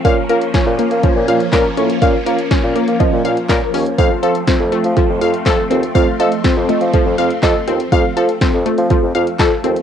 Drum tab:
HH |x-xxx-xxx-xxx-xx|x-xxx-xxx-xxx-ox|x-xxx-xxx-xxx-xx|x-xxx-xxx-xxx-xx|
CP |------------x---|------------x---|------------x---|------------x---|
SD |----o-------o---|----o-------o---|----o-------o---|----o-------o---|
BD |o---o---o---o---|o---o---o---o---|o---o---o---o---|o---o---o---o---|

HH |x-xxx-xxx-xxx-xx|
CP |------------x---|
SD |----o-------o---|
BD |o---o---o---o---|